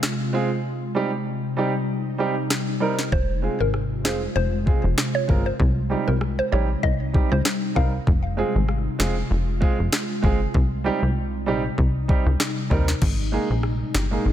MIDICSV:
0, 0, Header, 1, 6, 480
1, 0, Start_track
1, 0, Key_signature, -4, "minor"
1, 0, Tempo, 618557
1, 503, Time_signature, 4, 2, 24, 8
1, 11118, End_track
2, 0, Start_track
2, 0, Title_t, "Synth pluck"
2, 0, Program_c, 0, 84
2, 2424, Note_on_c, 0, 72, 106
2, 2580, Note_off_c, 0, 72, 0
2, 2797, Note_on_c, 0, 70, 75
2, 2866, Note_off_c, 0, 70, 0
2, 3143, Note_on_c, 0, 72, 79
2, 3230, Note_off_c, 0, 72, 0
2, 3381, Note_on_c, 0, 72, 110
2, 3734, Note_off_c, 0, 72, 0
2, 3995, Note_on_c, 0, 73, 79
2, 4064, Note_off_c, 0, 73, 0
2, 4237, Note_on_c, 0, 72, 77
2, 4306, Note_off_c, 0, 72, 0
2, 4715, Note_on_c, 0, 70, 81
2, 4784, Note_off_c, 0, 70, 0
2, 4957, Note_on_c, 0, 72, 80
2, 5026, Note_off_c, 0, 72, 0
2, 5063, Note_on_c, 0, 73, 84
2, 5150, Note_off_c, 0, 73, 0
2, 5301, Note_on_c, 0, 75, 94
2, 5389, Note_off_c, 0, 75, 0
2, 5678, Note_on_c, 0, 72, 78
2, 5746, Note_off_c, 0, 72, 0
2, 6023, Note_on_c, 0, 77, 68
2, 6110, Note_off_c, 0, 77, 0
2, 11118, End_track
3, 0, Start_track
3, 0, Title_t, "Grand piano"
3, 0, Program_c, 1, 0
3, 256, Note_on_c, 1, 56, 90
3, 259, Note_on_c, 1, 60, 84
3, 264, Note_on_c, 1, 65, 85
3, 269, Note_on_c, 1, 68, 104
3, 367, Note_off_c, 1, 56, 0
3, 368, Note_off_c, 1, 60, 0
3, 371, Note_off_c, 1, 65, 0
3, 373, Note_off_c, 1, 68, 0
3, 735, Note_on_c, 1, 55, 87
3, 740, Note_on_c, 1, 60, 80
3, 744, Note_on_c, 1, 63, 79
3, 748, Note_on_c, 1, 67, 96
3, 846, Note_off_c, 1, 55, 0
3, 849, Note_off_c, 1, 60, 0
3, 851, Note_off_c, 1, 63, 0
3, 853, Note_off_c, 1, 67, 0
3, 1215, Note_on_c, 1, 55, 90
3, 1220, Note_on_c, 1, 60, 76
3, 1225, Note_on_c, 1, 63, 82
3, 1229, Note_on_c, 1, 67, 96
3, 1326, Note_off_c, 1, 55, 0
3, 1329, Note_off_c, 1, 60, 0
3, 1331, Note_off_c, 1, 63, 0
3, 1333, Note_off_c, 1, 67, 0
3, 1694, Note_on_c, 1, 55, 88
3, 1699, Note_on_c, 1, 60, 80
3, 1703, Note_on_c, 1, 63, 78
3, 1707, Note_on_c, 1, 67, 95
3, 1806, Note_off_c, 1, 55, 0
3, 1808, Note_off_c, 1, 60, 0
3, 1810, Note_off_c, 1, 63, 0
3, 1812, Note_off_c, 1, 67, 0
3, 2174, Note_on_c, 1, 55, 89
3, 2179, Note_on_c, 1, 60, 82
3, 2183, Note_on_c, 1, 63, 84
3, 2187, Note_on_c, 1, 70, 103
3, 2286, Note_off_c, 1, 55, 0
3, 2288, Note_off_c, 1, 60, 0
3, 2290, Note_off_c, 1, 63, 0
3, 2292, Note_off_c, 1, 70, 0
3, 2655, Note_on_c, 1, 56, 73
3, 2659, Note_on_c, 1, 60, 67
3, 2663, Note_on_c, 1, 65, 66
3, 2668, Note_on_c, 1, 68, 82
3, 2766, Note_off_c, 1, 56, 0
3, 2768, Note_off_c, 1, 60, 0
3, 2771, Note_off_c, 1, 65, 0
3, 2773, Note_off_c, 1, 68, 0
3, 3137, Note_on_c, 1, 56, 71
3, 3141, Note_on_c, 1, 60, 66
3, 3145, Note_on_c, 1, 65, 69
3, 3149, Note_on_c, 1, 68, 79
3, 3247, Note_off_c, 1, 56, 0
3, 3249, Note_off_c, 1, 60, 0
3, 3251, Note_off_c, 1, 65, 0
3, 3254, Note_off_c, 1, 68, 0
3, 3616, Note_on_c, 1, 56, 77
3, 3621, Note_on_c, 1, 60, 69
3, 3626, Note_on_c, 1, 65, 69
3, 3629, Note_on_c, 1, 68, 86
3, 3727, Note_off_c, 1, 56, 0
3, 3730, Note_off_c, 1, 60, 0
3, 3732, Note_off_c, 1, 65, 0
3, 3734, Note_off_c, 1, 68, 0
3, 4096, Note_on_c, 1, 56, 75
3, 4100, Note_on_c, 1, 60, 70
3, 4104, Note_on_c, 1, 65, 74
3, 4109, Note_on_c, 1, 70, 85
3, 4207, Note_off_c, 1, 56, 0
3, 4209, Note_off_c, 1, 60, 0
3, 4211, Note_off_c, 1, 65, 0
3, 4213, Note_off_c, 1, 70, 0
3, 4575, Note_on_c, 1, 55, 75
3, 4579, Note_on_c, 1, 60, 67
3, 4583, Note_on_c, 1, 63, 67
3, 4588, Note_on_c, 1, 67, 82
3, 4686, Note_off_c, 1, 55, 0
3, 4688, Note_off_c, 1, 60, 0
3, 4690, Note_off_c, 1, 63, 0
3, 4693, Note_off_c, 1, 67, 0
3, 5056, Note_on_c, 1, 55, 75
3, 5061, Note_on_c, 1, 60, 67
3, 5065, Note_on_c, 1, 63, 65
3, 5069, Note_on_c, 1, 67, 85
3, 5167, Note_off_c, 1, 55, 0
3, 5169, Note_off_c, 1, 60, 0
3, 5171, Note_off_c, 1, 63, 0
3, 5173, Note_off_c, 1, 67, 0
3, 5535, Note_on_c, 1, 55, 74
3, 5540, Note_on_c, 1, 60, 71
3, 5544, Note_on_c, 1, 63, 69
3, 5548, Note_on_c, 1, 67, 85
3, 5646, Note_off_c, 1, 55, 0
3, 5649, Note_off_c, 1, 60, 0
3, 5651, Note_off_c, 1, 63, 0
3, 5653, Note_off_c, 1, 67, 0
3, 6015, Note_on_c, 1, 55, 76
3, 6020, Note_on_c, 1, 60, 72
3, 6024, Note_on_c, 1, 63, 72
3, 6028, Note_on_c, 1, 70, 88
3, 6126, Note_off_c, 1, 55, 0
3, 6129, Note_off_c, 1, 60, 0
3, 6131, Note_off_c, 1, 63, 0
3, 6133, Note_off_c, 1, 70, 0
3, 6495, Note_on_c, 1, 56, 84
3, 6499, Note_on_c, 1, 60, 85
3, 6504, Note_on_c, 1, 65, 79
3, 6508, Note_on_c, 1, 68, 97
3, 6606, Note_off_c, 1, 56, 0
3, 6608, Note_off_c, 1, 60, 0
3, 6611, Note_off_c, 1, 65, 0
3, 6613, Note_off_c, 1, 68, 0
3, 6974, Note_on_c, 1, 56, 87
3, 6979, Note_on_c, 1, 60, 81
3, 6984, Note_on_c, 1, 65, 81
3, 6988, Note_on_c, 1, 68, 103
3, 7086, Note_off_c, 1, 56, 0
3, 7088, Note_off_c, 1, 60, 0
3, 7091, Note_off_c, 1, 65, 0
3, 7093, Note_off_c, 1, 68, 0
3, 7454, Note_on_c, 1, 56, 91
3, 7459, Note_on_c, 1, 60, 80
3, 7463, Note_on_c, 1, 65, 83
3, 7467, Note_on_c, 1, 68, 102
3, 7566, Note_off_c, 1, 56, 0
3, 7568, Note_off_c, 1, 60, 0
3, 7570, Note_off_c, 1, 65, 0
3, 7572, Note_off_c, 1, 68, 0
3, 7934, Note_on_c, 1, 56, 96
3, 7939, Note_on_c, 1, 60, 83
3, 7943, Note_on_c, 1, 65, 84
3, 7948, Note_on_c, 1, 68, 105
3, 8046, Note_off_c, 1, 56, 0
3, 8048, Note_off_c, 1, 60, 0
3, 8050, Note_off_c, 1, 65, 0
3, 8053, Note_off_c, 1, 68, 0
3, 8414, Note_on_c, 1, 55, 91
3, 8419, Note_on_c, 1, 60, 83
3, 8424, Note_on_c, 1, 63, 80
3, 8428, Note_on_c, 1, 67, 97
3, 8526, Note_off_c, 1, 55, 0
3, 8528, Note_off_c, 1, 60, 0
3, 8531, Note_off_c, 1, 63, 0
3, 8533, Note_off_c, 1, 67, 0
3, 8895, Note_on_c, 1, 55, 90
3, 8900, Note_on_c, 1, 60, 79
3, 8904, Note_on_c, 1, 63, 82
3, 8908, Note_on_c, 1, 67, 97
3, 9006, Note_off_c, 1, 55, 0
3, 9009, Note_off_c, 1, 60, 0
3, 9011, Note_off_c, 1, 63, 0
3, 9013, Note_off_c, 1, 67, 0
3, 9376, Note_on_c, 1, 55, 86
3, 9381, Note_on_c, 1, 60, 83
3, 9385, Note_on_c, 1, 63, 84
3, 9390, Note_on_c, 1, 67, 94
3, 9487, Note_off_c, 1, 55, 0
3, 9489, Note_off_c, 1, 60, 0
3, 9491, Note_off_c, 1, 63, 0
3, 9494, Note_off_c, 1, 67, 0
3, 9855, Note_on_c, 1, 55, 89
3, 9860, Note_on_c, 1, 60, 82
3, 9863, Note_on_c, 1, 63, 84
3, 9868, Note_on_c, 1, 70, 103
3, 9966, Note_off_c, 1, 55, 0
3, 9969, Note_off_c, 1, 60, 0
3, 9970, Note_off_c, 1, 63, 0
3, 9973, Note_off_c, 1, 70, 0
3, 10336, Note_on_c, 1, 56, 84
3, 10340, Note_on_c, 1, 58, 78
3, 10345, Note_on_c, 1, 63, 74
3, 10349, Note_on_c, 1, 68, 93
3, 10447, Note_off_c, 1, 56, 0
3, 10449, Note_off_c, 1, 58, 0
3, 10451, Note_off_c, 1, 63, 0
3, 10453, Note_off_c, 1, 68, 0
3, 10816, Note_on_c, 1, 63, 50
3, 10829, Note_on_c, 1, 67, 58
3, 10873, Note_off_c, 1, 63, 0
3, 10880, Note_off_c, 1, 67, 0
3, 10950, Note_on_c, 1, 56, 76
3, 10954, Note_on_c, 1, 58, 73
3, 10959, Note_on_c, 1, 63, 70
3, 10964, Note_on_c, 1, 68, 84
3, 11038, Note_off_c, 1, 56, 0
3, 11040, Note_off_c, 1, 58, 0
3, 11042, Note_off_c, 1, 63, 0
3, 11045, Note_off_c, 1, 68, 0
3, 11118, End_track
4, 0, Start_track
4, 0, Title_t, "Ambient pad"
4, 0, Program_c, 2, 92
4, 0, Note_on_c, 2, 48, 85
4, 0, Note_on_c, 2, 56, 79
4, 0, Note_on_c, 2, 65, 93
4, 471, Note_off_c, 2, 48, 0
4, 484, Note_off_c, 2, 56, 0
4, 484, Note_off_c, 2, 65, 0
4, 502, Note_on_c, 2, 55, 76
4, 503, Note_on_c, 2, 48, 85
4, 503, Note_on_c, 2, 63, 91
4, 2403, Note_off_c, 2, 55, 0
4, 2404, Note_off_c, 2, 63, 0
4, 2425, Note_on_c, 2, 65, 89
4, 2426, Note_on_c, 2, 56, 78
4, 4325, Note_off_c, 2, 56, 0
4, 4325, Note_off_c, 2, 65, 0
4, 4343, Note_on_c, 2, 55, 76
4, 4343, Note_on_c, 2, 63, 90
4, 6244, Note_off_c, 2, 55, 0
4, 6244, Note_off_c, 2, 63, 0
4, 6261, Note_on_c, 2, 56, 81
4, 6262, Note_on_c, 2, 65, 89
4, 8163, Note_off_c, 2, 56, 0
4, 8163, Note_off_c, 2, 65, 0
4, 8183, Note_on_c, 2, 55, 77
4, 8184, Note_on_c, 2, 63, 95
4, 10072, Note_off_c, 2, 48, 0
4, 10084, Note_off_c, 2, 55, 0
4, 10084, Note_off_c, 2, 63, 0
4, 10104, Note_on_c, 2, 46, 85
4, 10104, Note_on_c, 2, 56, 76
4, 10104, Note_on_c, 2, 63, 90
4, 11118, Note_off_c, 2, 46, 0
4, 11118, Note_off_c, 2, 56, 0
4, 11118, Note_off_c, 2, 63, 0
4, 11118, End_track
5, 0, Start_track
5, 0, Title_t, "Analog synth bass"
5, 0, Program_c, 3, 38
5, 2422, Note_on_c, 3, 29, 112
5, 2705, Note_off_c, 3, 29, 0
5, 2796, Note_on_c, 3, 32, 86
5, 3141, Note_on_c, 3, 29, 85
5, 3153, Note_off_c, 3, 32, 0
5, 3323, Note_off_c, 3, 29, 0
5, 3381, Note_on_c, 3, 29, 101
5, 3664, Note_off_c, 3, 29, 0
5, 3756, Note_on_c, 3, 29, 89
5, 3836, Note_off_c, 3, 29, 0
5, 4103, Note_on_c, 3, 31, 86
5, 4284, Note_off_c, 3, 31, 0
5, 4342, Note_on_c, 3, 36, 107
5, 4625, Note_off_c, 3, 36, 0
5, 4718, Note_on_c, 3, 36, 89
5, 4978, Note_off_c, 3, 36, 0
5, 5065, Note_on_c, 3, 34, 89
5, 5245, Note_off_c, 3, 34, 0
5, 5302, Note_on_c, 3, 36, 96
5, 5584, Note_off_c, 3, 36, 0
5, 5678, Note_on_c, 3, 37, 93
5, 5757, Note_off_c, 3, 37, 0
5, 6024, Note_on_c, 3, 36, 86
5, 6205, Note_off_c, 3, 36, 0
5, 6263, Note_on_c, 3, 29, 109
5, 6545, Note_off_c, 3, 29, 0
5, 6637, Note_on_c, 3, 32, 87
5, 6897, Note_off_c, 3, 32, 0
5, 6982, Note_on_c, 3, 29, 86
5, 7163, Note_off_c, 3, 29, 0
5, 7222, Note_on_c, 3, 29, 106
5, 7505, Note_off_c, 3, 29, 0
5, 7597, Note_on_c, 3, 29, 89
5, 7676, Note_off_c, 3, 29, 0
5, 7944, Note_on_c, 3, 31, 99
5, 8124, Note_off_c, 3, 31, 0
5, 8182, Note_on_c, 3, 36, 110
5, 8464, Note_off_c, 3, 36, 0
5, 8555, Note_on_c, 3, 36, 88
5, 8901, Note_on_c, 3, 34, 89
5, 8913, Note_off_c, 3, 36, 0
5, 9082, Note_off_c, 3, 34, 0
5, 9141, Note_on_c, 3, 36, 95
5, 9424, Note_off_c, 3, 36, 0
5, 9515, Note_on_c, 3, 37, 80
5, 9595, Note_off_c, 3, 37, 0
5, 9863, Note_on_c, 3, 39, 93
5, 10044, Note_off_c, 3, 39, 0
5, 10102, Note_on_c, 3, 32, 109
5, 10384, Note_off_c, 3, 32, 0
5, 10476, Note_on_c, 3, 34, 95
5, 10737, Note_off_c, 3, 34, 0
5, 10822, Note_on_c, 3, 31, 100
5, 11003, Note_off_c, 3, 31, 0
5, 11061, Note_on_c, 3, 32, 91
5, 11118, Note_off_c, 3, 32, 0
5, 11118, End_track
6, 0, Start_track
6, 0, Title_t, "Drums"
6, 22, Note_on_c, 9, 38, 109
6, 24, Note_on_c, 9, 37, 88
6, 99, Note_off_c, 9, 38, 0
6, 101, Note_off_c, 9, 37, 0
6, 1943, Note_on_c, 9, 37, 91
6, 1943, Note_on_c, 9, 38, 109
6, 2021, Note_off_c, 9, 37, 0
6, 2021, Note_off_c, 9, 38, 0
6, 2317, Note_on_c, 9, 38, 67
6, 2395, Note_off_c, 9, 38, 0
6, 2423, Note_on_c, 9, 36, 115
6, 2501, Note_off_c, 9, 36, 0
6, 2901, Note_on_c, 9, 37, 62
6, 2978, Note_off_c, 9, 37, 0
6, 3142, Note_on_c, 9, 38, 115
6, 3144, Note_on_c, 9, 37, 90
6, 3220, Note_off_c, 9, 38, 0
6, 3222, Note_off_c, 9, 37, 0
6, 3623, Note_on_c, 9, 36, 98
6, 3701, Note_off_c, 9, 36, 0
6, 3862, Note_on_c, 9, 38, 107
6, 3864, Note_on_c, 9, 37, 88
6, 3940, Note_off_c, 9, 38, 0
6, 3942, Note_off_c, 9, 37, 0
6, 4104, Note_on_c, 9, 36, 94
6, 4181, Note_off_c, 9, 36, 0
6, 4342, Note_on_c, 9, 36, 112
6, 4420, Note_off_c, 9, 36, 0
6, 4820, Note_on_c, 9, 37, 64
6, 4897, Note_off_c, 9, 37, 0
6, 5302, Note_on_c, 9, 36, 88
6, 5380, Note_off_c, 9, 36, 0
6, 5544, Note_on_c, 9, 36, 96
6, 5621, Note_off_c, 9, 36, 0
6, 5782, Note_on_c, 9, 38, 112
6, 5784, Note_on_c, 9, 37, 88
6, 5860, Note_off_c, 9, 38, 0
6, 5862, Note_off_c, 9, 37, 0
6, 6024, Note_on_c, 9, 36, 92
6, 6102, Note_off_c, 9, 36, 0
6, 6263, Note_on_c, 9, 36, 117
6, 6341, Note_off_c, 9, 36, 0
6, 6740, Note_on_c, 9, 37, 62
6, 6818, Note_off_c, 9, 37, 0
6, 6982, Note_on_c, 9, 38, 114
6, 6984, Note_on_c, 9, 37, 90
6, 7060, Note_off_c, 9, 38, 0
6, 7062, Note_off_c, 9, 37, 0
6, 7463, Note_on_c, 9, 36, 99
6, 7541, Note_off_c, 9, 36, 0
6, 7702, Note_on_c, 9, 38, 112
6, 7704, Note_on_c, 9, 37, 90
6, 7779, Note_off_c, 9, 38, 0
6, 7781, Note_off_c, 9, 37, 0
6, 7943, Note_on_c, 9, 36, 91
6, 8021, Note_off_c, 9, 36, 0
6, 8182, Note_on_c, 9, 36, 118
6, 8260, Note_off_c, 9, 36, 0
6, 9141, Note_on_c, 9, 36, 89
6, 9219, Note_off_c, 9, 36, 0
6, 9383, Note_on_c, 9, 36, 97
6, 9460, Note_off_c, 9, 36, 0
6, 9622, Note_on_c, 9, 37, 88
6, 9622, Note_on_c, 9, 38, 107
6, 9699, Note_off_c, 9, 37, 0
6, 9699, Note_off_c, 9, 38, 0
6, 9863, Note_on_c, 9, 36, 92
6, 9941, Note_off_c, 9, 36, 0
6, 9996, Note_on_c, 9, 38, 65
6, 10074, Note_off_c, 9, 38, 0
6, 10101, Note_on_c, 9, 49, 91
6, 10102, Note_on_c, 9, 36, 119
6, 10178, Note_off_c, 9, 49, 0
6, 10180, Note_off_c, 9, 36, 0
6, 10579, Note_on_c, 9, 37, 64
6, 10656, Note_off_c, 9, 37, 0
6, 10821, Note_on_c, 9, 38, 110
6, 10823, Note_on_c, 9, 37, 89
6, 10899, Note_off_c, 9, 38, 0
6, 10901, Note_off_c, 9, 37, 0
6, 11118, End_track
0, 0, End_of_file